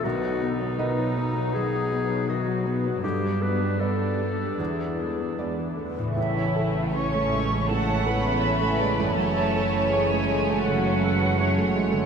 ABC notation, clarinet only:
X:1
M:4/4
L:1/8
Q:1/4=80
K:E
V:1 name="Clarinet"
F z D2 G2 F2 | =G B A2 ^G3 z | [K:A] z8 | z8 |]